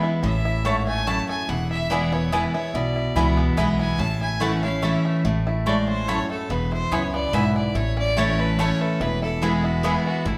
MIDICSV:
0, 0, Header, 1, 6, 480
1, 0, Start_track
1, 0, Key_signature, 3, "major"
1, 0, Tempo, 417537
1, 271, Time_signature, 3, 2, 24, 8
1, 11931, End_track
2, 0, Start_track
2, 0, Title_t, "Fiddle"
2, 0, Program_c, 0, 110
2, 263, Note_on_c, 0, 76, 91
2, 954, Note_off_c, 0, 76, 0
2, 1002, Note_on_c, 0, 80, 101
2, 1230, Note_on_c, 0, 81, 106
2, 1248, Note_off_c, 0, 80, 0
2, 1477, Note_off_c, 0, 81, 0
2, 1484, Note_on_c, 0, 80, 92
2, 1717, Note_on_c, 0, 78, 90
2, 1734, Note_off_c, 0, 80, 0
2, 1956, Note_off_c, 0, 78, 0
2, 1963, Note_on_c, 0, 76, 100
2, 2192, Note_on_c, 0, 74, 86
2, 2209, Note_off_c, 0, 76, 0
2, 2447, Note_on_c, 0, 73, 86
2, 2464, Note_off_c, 0, 74, 0
2, 2674, Note_on_c, 0, 71, 75
2, 2691, Note_off_c, 0, 73, 0
2, 2922, Note_off_c, 0, 71, 0
2, 2929, Note_on_c, 0, 73, 87
2, 3158, Note_on_c, 0, 74, 90
2, 3175, Note_off_c, 0, 73, 0
2, 3888, Note_off_c, 0, 74, 0
2, 4372, Note_on_c, 0, 80, 92
2, 4593, Note_on_c, 0, 81, 106
2, 4611, Note_off_c, 0, 80, 0
2, 4839, Note_off_c, 0, 81, 0
2, 4846, Note_on_c, 0, 80, 91
2, 5080, Note_on_c, 0, 78, 94
2, 5097, Note_off_c, 0, 80, 0
2, 5319, Note_off_c, 0, 78, 0
2, 5325, Note_on_c, 0, 77, 87
2, 5559, Note_on_c, 0, 76, 81
2, 5576, Note_off_c, 0, 77, 0
2, 5923, Note_off_c, 0, 76, 0
2, 6514, Note_on_c, 0, 74, 85
2, 6748, Note_off_c, 0, 74, 0
2, 6759, Note_on_c, 0, 72, 92
2, 6990, Note_on_c, 0, 73, 105
2, 7007, Note_off_c, 0, 72, 0
2, 7244, Note_off_c, 0, 73, 0
2, 7252, Note_on_c, 0, 69, 84
2, 7483, Note_on_c, 0, 71, 96
2, 7501, Note_off_c, 0, 69, 0
2, 7730, Note_off_c, 0, 71, 0
2, 7736, Note_on_c, 0, 72, 94
2, 7971, Note_on_c, 0, 73, 91
2, 7988, Note_off_c, 0, 72, 0
2, 8205, Note_off_c, 0, 73, 0
2, 8212, Note_on_c, 0, 74, 96
2, 8440, Note_on_c, 0, 76, 104
2, 8458, Note_off_c, 0, 74, 0
2, 8689, Note_off_c, 0, 76, 0
2, 8699, Note_on_c, 0, 74, 83
2, 8923, Note_on_c, 0, 73, 96
2, 8941, Note_off_c, 0, 74, 0
2, 9170, Note_off_c, 0, 73, 0
2, 9178, Note_on_c, 0, 74, 111
2, 9402, Note_on_c, 0, 73, 97
2, 9420, Note_off_c, 0, 74, 0
2, 9649, Note_on_c, 0, 71, 98
2, 9667, Note_off_c, 0, 73, 0
2, 9882, Note_on_c, 0, 73, 90
2, 9899, Note_off_c, 0, 71, 0
2, 10135, Note_on_c, 0, 69, 87
2, 10152, Note_off_c, 0, 73, 0
2, 10365, Note_on_c, 0, 71, 100
2, 10382, Note_off_c, 0, 69, 0
2, 10606, Note_off_c, 0, 71, 0
2, 10612, Note_on_c, 0, 69, 91
2, 10837, Note_on_c, 0, 68, 81
2, 10854, Note_off_c, 0, 69, 0
2, 11092, Note_on_c, 0, 66, 81
2, 11109, Note_off_c, 0, 68, 0
2, 11314, Note_on_c, 0, 68, 91
2, 11331, Note_off_c, 0, 66, 0
2, 11565, Note_off_c, 0, 68, 0
2, 11570, Note_on_c, 0, 66, 87
2, 11805, Note_on_c, 0, 64, 81
2, 11822, Note_off_c, 0, 66, 0
2, 11931, Note_off_c, 0, 64, 0
2, 11931, End_track
3, 0, Start_track
3, 0, Title_t, "Mandolin"
3, 0, Program_c, 1, 25
3, 749, Note_on_c, 1, 57, 82
3, 754, Note_on_c, 1, 64, 81
3, 758, Note_on_c, 1, 73, 90
3, 760, Note_on_c, 1, 81, 99
3, 860, Note_off_c, 1, 57, 0
3, 862, Note_off_c, 1, 64, 0
3, 864, Note_off_c, 1, 73, 0
3, 865, Note_off_c, 1, 81, 0
3, 1229, Note_on_c, 1, 57, 88
3, 1232, Note_on_c, 1, 64, 91
3, 1237, Note_on_c, 1, 73, 90
3, 1238, Note_on_c, 1, 81, 91
3, 1340, Note_off_c, 1, 57, 0
3, 1341, Note_off_c, 1, 64, 0
3, 1344, Note_off_c, 1, 73, 0
3, 1344, Note_off_c, 1, 81, 0
3, 2194, Note_on_c, 1, 59, 71
3, 2196, Note_on_c, 1, 64, 82
3, 2200, Note_on_c, 1, 71, 83
3, 2203, Note_on_c, 1, 80, 86
3, 2302, Note_off_c, 1, 59, 0
3, 2304, Note_off_c, 1, 64, 0
3, 2305, Note_off_c, 1, 71, 0
3, 2307, Note_off_c, 1, 80, 0
3, 2671, Note_on_c, 1, 59, 87
3, 2675, Note_on_c, 1, 64, 97
3, 2677, Note_on_c, 1, 71, 100
3, 2679, Note_on_c, 1, 80, 100
3, 2781, Note_off_c, 1, 59, 0
3, 2783, Note_off_c, 1, 64, 0
3, 2784, Note_off_c, 1, 71, 0
3, 2785, Note_off_c, 1, 80, 0
3, 3628, Note_on_c, 1, 59, 86
3, 3633, Note_on_c, 1, 64, 85
3, 3636, Note_on_c, 1, 71, 81
3, 3639, Note_on_c, 1, 80, 98
3, 3740, Note_off_c, 1, 59, 0
3, 3743, Note_off_c, 1, 64, 0
3, 3744, Note_off_c, 1, 71, 0
3, 3745, Note_off_c, 1, 80, 0
3, 4104, Note_on_c, 1, 59, 81
3, 4109, Note_on_c, 1, 64, 98
3, 4113, Note_on_c, 1, 71, 90
3, 4115, Note_on_c, 1, 80, 102
3, 4218, Note_off_c, 1, 59, 0
3, 4221, Note_off_c, 1, 64, 0
3, 4223, Note_off_c, 1, 71, 0
3, 4224, Note_off_c, 1, 80, 0
3, 5061, Note_on_c, 1, 57, 84
3, 5068, Note_on_c, 1, 64, 88
3, 5073, Note_on_c, 1, 73, 88
3, 5073, Note_on_c, 1, 81, 92
3, 5177, Note_off_c, 1, 57, 0
3, 5180, Note_off_c, 1, 64, 0
3, 5183, Note_off_c, 1, 73, 0
3, 5183, Note_off_c, 1, 81, 0
3, 5542, Note_on_c, 1, 57, 79
3, 5548, Note_on_c, 1, 64, 84
3, 5550, Note_on_c, 1, 73, 88
3, 5553, Note_on_c, 1, 81, 90
3, 5657, Note_off_c, 1, 57, 0
3, 5660, Note_off_c, 1, 64, 0
3, 5661, Note_off_c, 1, 73, 0
3, 5663, Note_off_c, 1, 81, 0
3, 6506, Note_on_c, 1, 57, 79
3, 6509, Note_on_c, 1, 64, 87
3, 6513, Note_on_c, 1, 73, 88
3, 6517, Note_on_c, 1, 81, 88
3, 6619, Note_off_c, 1, 57, 0
3, 6621, Note_off_c, 1, 64, 0
3, 6622, Note_off_c, 1, 73, 0
3, 6624, Note_off_c, 1, 81, 0
3, 6992, Note_on_c, 1, 57, 86
3, 6996, Note_on_c, 1, 64, 89
3, 6997, Note_on_c, 1, 73, 101
3, 7002, Note_on_c, 1, 81, 89
3, 7102, Note_off_c, 1, 57, 0
3, 7104, Note_off_c, 1, 64, 0
3, 7105, Note_off_c, 1, 73, 0
3, 7107, Note_off_c, 1, 81, 0
3, 7949, Note_on_c, 1, 59, 94
3, 7954, Note_on_c, 1, 64, 88
3, 7958, Note_on_c, 1, 71, 90
3, 7962, Note_on_c, 1, 80, 97
3, 8060, Note_off_c, 1, 59, 0
3, 8062, Note_off_c, 1, 64, 0
3, 8065, Note_off_c, 1, 71, 0
3, 8067, Note_off_c, 1, 80, 0
3, 8431, Note_on_c, 1, 59, 88
3, 8434, Note_on_c, 1, 64, 84
3, 8438, Note_on_c, 1, 71, 94
3, 8441, Note_on_c, 1, 80, 104
3, 8541, Note_off_c, 1, 59, 0
3, 8542, Note_off_c, 1, 64, 0
3, 8544, Note_off_c, 1, 71, 0
3, 8546, Note_off_c, 1, 80, 0
3, 9392, Note_on_c, 1, 57, 86
3, 9397, Note_on_c, 1, 64, 82
3, 9401, Note_on_c, 1, 73, 96
3, 9403, Note_on_c, 1, 81, 106
3, 9501, Note_off_c, 1, 57, 0
3, 9504, Note_off_c, 1, 64, 0
3, 9506, Note_off_c, 1, 73, 0
3, 9507, Note_off_c, 1, 81, 0
3, 9873, Note_on_c, 1, 57, 89
3, 9876, Note_on_c, 1, 64, 97
3, 9881, Note_on_c, 1, 73, 91
3, 9884, Note_on_c, 1, 81, 101
3, 9982, Note_off_c, 1, 57, 0
3, 9983, Note_off_c, 1, 64, 0
3, 9986, Note_off_c, 1, 73, 0
3, 9987, Note_off_c, 1, 81, 0
3, 10829, Note_on_c, 1, 59, 79
3, 10836, Note_on_c, 1, 64, 91
3, 10837, Note_on_c, 1, 71, 86
3, 10842, Note_on_c, 1, 80, 86
3, 10940, Note_off_c, 1, 59, 0
3, 10943, Note_off_c, 1, 64, 0
3, 10943, Note_off_c, 1, 71, 0
3, 10946, Note_off_c, 1, 80, 0
3, 11311, Note_on_c, 1, 59, 93
3, 11315, Note_on_c, 1, 64, 95
3, 11318, Note_on_c, 1, 71, 97
3, 11323, Note_on_c, 1, 80, 94
3, 11420, Note_off_c, 1, 59, 0
3, 11422, Note_off_c, 1, 64, 0
3, 11424, Note_off_c, 1, 71, 0
3, 11426, Note_off_c, 1, 80, 0
3, 11931, End_track
4, 0, Start_track
4, 0, Title_t, "Five-string banjo"
4, 0, Program_c, 2, 105
4, 0, Note_on_c, 2, 59, 63
4, 0, Note_on_c, 2, 64, 58
4, 37, Note_off_c, 2, 64, 0
4, 37, Note_on_c, 2, 64, 65
4, 257, Note_off_c, 2, 64, 0
4, 262, Note_on_c, 2, 61, 59
4, 270, Note_off_c, 2, 59, 0
4, 519, Note_on_c, 2, 64, 58
4, 730, Note_off_c, 2, 61, 0
4, 743, Note_on_c, 2, 61, 53
4, 1001, Note_on_c, 2, 57, 70
4, 1230, Note_off_c, 2, 64, 0
4, 1235, Note_on_c, 2, 64, 63
4, 1430, Note_off_c, 2, 61, 0
4, 1486, Note_on_c, 2, 69, 66
4, 1666, Note_off_c, 2, 57, 0
4, 1709, Note_off_c, 2, 64, 0
4, 1709, Note_on_c, 2, 64, 54
4, 1714, Note_off_c, 2, 69, 0
4, 1964, Note_off_c, 2, 64, 0
4, 1964, Note_on_c, 2, 64, 53
4, 2190, Note_off_c, 2, 64, 0
4, 2190, Note_on_c, 2, 64, 54
4, 2443, Note_on_c, 2, 59, 71
4, 2674, Note_off_c, 2, 64, 0
4, 2674, Note_on_c, 2, 64, 62
4, 2916, Note_off_c, 2, 64, 0
4, 2921, Note_on_c, 2, 64, 64
4, 3107, Note_off_c, 2, 59, 0
4, 3155, Note_off_c, 2, 64, 0
4, 3155, Note_on_c, 2, 64, 63
4, 3403, Note_off_c, 2, 64, 0
4, 3403, Note_on_c, 2, 64, 55
4, 3630, Note_off_c, 2, 64, 0
4, 3630, Note_on_c, 2, 64, 56
4, 3877, Note_on_c, 2, 59, 70
4, 4112, Note_off_c, 2, 64, 0
4, 4112, Note_on_c, 2, 64, 65
4, 4357, Note_off_c, 2, 64, 0
4, 4361, Note_on_c, 2, 64, 65
4, 4545, Note_off_c, 2, 59, 0
4, 4589, Note_on_c, 2, 61, 61
4, 4839, Note_off_c, 2, 64, 0
4, 4843, Note_on_c, 2, 64, 57
4, 5068, Note_on_c, 2, 57, 59
4, 5273, Note_off_c, 2, 61, 0
4, 5327, Note_on_c, 2, 61, 57
4, 5508, Note_off_c, 2, 64, 0
4, 5549, Note_on_c, 2, 64, 66
4, 5753, Note_off_c, 2, 57, 0
4, 5805, Note_on_c, 2, 57, 63
4, 5989, Note_off_c, 2, 61, 0
4, 6017, Note_off_c, 2, 57, 0
4, 6031, Note_on_c, 2, 57, 64
4, 6032, Note_off_c, 2, 64, 0
4, 6286, Note_on_c, 2, 64, 57
4, 6501, Note_off_c, 2, 57, 0
4, 6515, Note_on_c, 2, 57, 54
4, 6758, Note_on_c, 2, 61, 63
4, 6990, Note_on_c, 2, 69, 63
4, 7196, Note_off_c, 2, 57, 0
4, 7242, Note_on_c, 2, 57, 64
4, 7424, Note_off_c, 2, 61, 0
4, 7472, Note_off_c, 2, 57, 0
4, 7472, Note_off_c, 2, 69, 0
4, 7476, Note_on_c, 2, 59, 69
4, 7721, Note_off_c, 2, 64, 0
4, 7725, Note_on_c, 2, 64, 53
4, 7955, Note_off_c, 2, 64, 0
4, 7955, Note_on_c, 2, 64, 59
4, 8156, Note_off_c, 2, 59, 0
4, 8207, Note_on_c, 2, 59, 74
4, 8436, Note_off_c, 2, 64, 0
4, 8436, Note_on_c, 2, 64, 71
4, 8690, Note_off_c, 2, 64, 0
4, 8690, Note_on_c, 2, 64, 67
4, 8869, Note_off_c, 2, 59, 0
4, 8911, Note_off_c, 2, 64, 0
4, 8911, Note_on_c, 2, 64, 61
4, 9161, Note_on_c, 2, 61, 61
4, 9393, Note_on_c, 2, 57, 55
4, 9638, Note_off_c, 2, 64, 0
4, 9643, Note_on_c, 2, 64, 58
4, 9826, Note_off_c, 2, 61, 0
4, 9859, Note_off_c, 2, 57, 0
4, 9873, Note_on_c, 2, 57, 68
4, 10125, Note_on_c, 2, 52, 64
4, 10350, Note_off_c, 2, 64, 0
4, 10353, Note_off_c, 2, 57, 0
4, 10354, Note_on_c, 2, 64, 63
4, 10603, Note_off_c, 2, 64, 0
4, 10603, Note_on_c, 2, 64, 63
4, 10832, Note_on_c, 2, 59, 58
4, 11083, Note_off_c, 2, 64, 0
4, 11083, Note_on_c, 2, 64, 64
4, 11300, Note_off_c, 2, 59, 0
4, 11313, Note_on_c, 2, 59, 68
4, 11563, Note_off_c, 2, 52, 0
4, 11568, Note_on_c, 2, 52, 64
4, 11792, Note_off_c, 2, 64, 0
4, 11793, Note_off_c, 2, 59, 0
4, 11797, Note_on_c, 2, 64, 57
4, 11931, Note_off_c, 2, 52, 0
4, 11931, Note_off_c, 2, 64, 0
4, 11931, End_track
5, 0, Start_track
5, 0, Title_t, "Steel-string acoustic guitar"
5, 0, Program_c, 3, 25
5, 0, Note_on_c, 3, 52, 80
5, 0, Note_on_c, 3, 56, 83
5, 0, Note_on_c, 3, 59, 88
5, 0, Note_on_c, 3, 64, 81
5, 242, Note_off_c, 3, 52, 0
5, 248, Note_off_c, 3, 56, 0
5, 252, Note_off_c, 3, 59, 0
5, 256, Note_off_c, 3, 64, 0
5, 270, Note_on_c, 3, 45, 87
5, 746, Note_on_c, 3, 44, 89
5, 1186, Note_off_c, 3, 45, 0
5, 1207, Note_off_c, 3, 44, 0
5, 1232, Note_on_c, 3, 42, 91
5, 1690, Note_off_c, 3, 42, 0
5, 1711, Note_on_c, 3, 40, 89
5, 2183, Note_on_c, 3, 52, 97
5, 2193, Note_on_c, 3, 56, 101
5, 2203, Note_on_c, 3, 59, 92
5, 2212, Note_on_c, 3, 64, 110
5, 2426, Note_off_c, 3, 64, 0
5, 2430, Note_off_c, 3, 52, 0
5, 2435, Note_off_c, 3, 56, 0
5, 2440, Note_off_c, 3, 59, 0
5, 2440, Note_on_c, 3, 64, 55
5, 2467, Note_on_c, 3, 59, 48
5, 2627, Note_off_c, 3, 40, 0
5, 2662, Note_off_c, 3, 64, 0
5, 2671, Note_on_c, 3, 52, 74
5, 2676, Note_off_c, 3, 59, 0
5, 2680, Note_on_c, 3, 56, 82
5, 2689, Note_on_c, 3, 59, 87
5, 2693, Note_on_c, 3, 64, 80
5, 2911, Note_off_c, 3, 64, 0
5, 2914, Note_off_c, 3, 52, 0
5, 2919, Note_off_c, 3, 56, 0
5, 2923, Note_off_c, 3, 59, 0
5, 2924, Note_on_c, 3, 64, 59
5, 2954, Note_on_c, 3, 59, 51
5, 3144, Note_off_c, 3, 64, 0
5, 3159, Note_off_c, 3, 59, 0
5, 3159, Note_on_c, 3, 47, 87
5, 3636, Note_on_c, 3, 52, 84
5, 3645, Note_on_c, 3, 56, 86
5, 3653, Note_on_c, 3, 59, 102
5, 3660, Note_on_c, 3, 64, 97
5, 4072, Note_off_c, 3, 47, 0
5, 4093, Note_off_c, 3, 52, 0
5, 4097, Note_off_c, 3, 56, 0
5, 4101, Note_off_c, 3, 59, 0
5, 4105, Note_off_c, 3, 64, 0
5, 4109, Note_on_c, 3, 52, 84
5, 4120, Note_on_c, 3, 56, 76
5, 4128, Note_on_c, 3, 59, 92
5, 4136, Note_on_c, 3, 64, 93
5, 4569, Note_off_c, 3, 52, 0
5, 4575, Note_off_c, 3, 56, 0
5, 4579, Note_off_c, 3, 59, 0
5, 4583, Note_off_c, 3, 64, 0
5, 4592, Note_on_c, 3, 45, 89
5, 5059, Note_on_c, 3, 52, 89
5, 5074, Note_on_c, 3, 57, 103
5, 5082, Note_on_c, 3, 61, 92
5, 5088, Note_on_c, 3, 64, 96
5, 5307, Note_off_c, 3, 64, 0
5, 5309, Note_off_c, 3, 52, 0
5, 5316, Note_off_c, 3, 57, 0
5, 5320, Note_off_c, 3, 61, 0
5, 5321, Note_on_c, 3, 64, 60
5, 5345, Note_on_c, 3, 61, 50
5, 5508, Note_off_c, 3, 45, 0
5, 5543, Note_off_c, 3, 64, 0
5, 5549, Note_on_c, 3, 52, 77
5, 5555, Note_off_c, 3, 61, 0
5, 5561, Note_on_c, 3, 57, 80
5, 5566, Note_on_c, 3, 61, 91
5, 5575, Note_on_c, 3, 64, 86
5, 6009, Note_off_c, 3, 52, 0
5, 6015, Note_off_c, 3, 57, 0
5, 6018, Note_off_c, 3, 61, 0
5, 6022, Note_off_c, 3, 64, 0
5, 6033, Note_on_c, 3, 45, 89
5, 6513, Note_on_c, 3, 56, 95
5, 6948, Note_off_c, 3, 45, 0
5, 6971, Note_off_c, 3, 56, 0
5, 7001, Note_on_c, 3, 42, 91
5, 7455, Note_off_c, 3, 42, 0
5, 7474, Note_on_c, 3, 40, 91
5, 7953, Note_off_c, 3, 40, 0
5, 7958, Note_on_c, 3, 42, 88
5, 8413, Note_off_c, 3, 42, 0
5, 8429, Note_on_c, 3, 44, 94
5, 8888, Note_off_c, 3, 44, 0
5, 8913, Note_on_c, 3, 45, 82
5, 9389, Note_on_c, 3, 52, 92
5, 9397, Note_on_c, 3, 57, 97
5, 9408, Note_on_c, 3, 61, 96
5, 9417, Note_on_c, 3, 64, 101
5, 9827, Note_off_c, 3, 45, 0
5, 9848, Note_off_c, 3, 52, 0
5, 9852, Note_off_c, 3, 57, 0
5, 9858, Note_off_c, 3, 61, 0
5, 9862, Note_off_c, 3, 64, 0
5, 9872, Note_on_c, 3, 52, 88
5, 9877, Note_on_c, 3, 57, 80
5, 9888, Note_on_c, 3, 61, 92
5, 9897, Note_on_c, 3, 64, 98
5, 10329, Note_off_c, 3, 52, 0
5, 10332, Note_off_c, 3, 57, 0
5, 10337, Note_off_c, 3, 61, 0
5, 10342, Note_off_c, 3, 64, 0
5, 10358, Note_on_c, 3, 40, 82
5, 10826, Note_on_c, 3, 52, 83
5, 10835, Note_on_c, 3, 56, 96
5, 10841, Note_on_c, 3, 59, 98
5, 10851, Note_on_c, 3, 64, 96
5, 11269, Note_off_c, 3, 40, 0
5, 11286, Note_off_c, 3, 52, 0
5, 11291, Note_off_c, 3, 56, 0
5, 11294, Note_off_c, 3, 59, 0
5, 11299, Note_off_c, 3, 64, 0
5, 11303, Note_on_c, 3, 52, 89
5, 11315, Note_on_c, 3, 56, 83
5, 11320, Note_on_c, 3, 59, 92
5, 11330, Note_on_c, 3, 64, 91
5, 11765, Note_off_c, 3, 52, 0
5, 11771, Note_off_c, 3, 56, 0
5, 11773, Note_off_c, 3, 59, 0
5, 11778, Note_off_c, 3, 64, 0
5, 11789, Note_on_c, 3, 45, 85
5, 11931, Note_off_c, 3, 45, 0
5, 11931, End_track
6, 0, Start_track
6, 0, Title_t, "Upright bass"
6, 0, Program_c, 4, 32
6, 266, Note_on_c, 4, 33, 88
6, 1363, Note_off_c, 4, 33, 0
6, 1709, Note_on_c, 4, 28, 86
6, 2805, Note_off_c, 4, 28, 0
6, 3147, Note_on_c, 4, 35, 74
6, 3515, Note_off_c, 4, 35, 0
6, 3627, Note_on_c, 4, 37, 83
6, 4039, Note_off_c, 4, 37, 0
6, 4106, Note_on_c, 4, 35, 84
6, 4518, Note_off_c, 4, 35, 0
6, 4581, Note_on_c, 4, 33, 91
6, 5680, Note_off_c, 4, 33, 0
6, 6030, Note_on_c, 4, 33, 83
6, 7125, Note_off_c, 4, 33, 0
6, 7467, Note_on_c, 4, 28, 84
6, 7834, Note_off_c, 4, 28, 0
6, 7949, Note_on_c, 4, 37, 76
6, 8359, Note_off_c, 4, 37, 0
6, 8425, Note_on_c, 4, 35, 83
6, 8836, Note_off_c, 4, 35, 0
6, 8907, Note_on_c, 4, 33, 93
6, 10002, Note_off_c, 4, 33, 0
6, 10349, Note_on_c, 4, 28, 88
6, 11444, Note_off_c, 4, 28, 0
6, 11790, Note_on_c, 4, 33, 86
6, 11931, Note_off_c, 4, 33, 0
6, 11931, End_track
0, 0, End_of_file